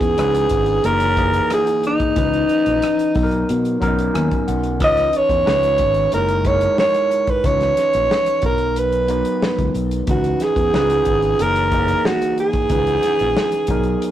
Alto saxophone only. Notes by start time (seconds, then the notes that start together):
Already playing: G#4
0.85 A#4
1.53 G#4
1.87 D#4
4.84 D#5
5.17 C#5
6.14 A#4
6.47 C#5
6.79 C#5
7.30 B4
7.46 C#5
8.46 A#4
8.79 B4
10.10 F#4
10.43 G#4
11.42 A#4
12.06 F#4
12.40 G#4